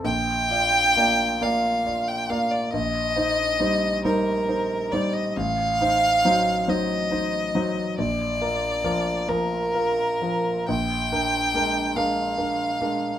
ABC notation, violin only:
X:1
M:6/8
L:1/16
Q:3/8=46
K:Bb
V:1 name="Violin"
g6 f3 g f d | e6 B4 d e | f6 e6 | d6 B6 |
g6 f6 |]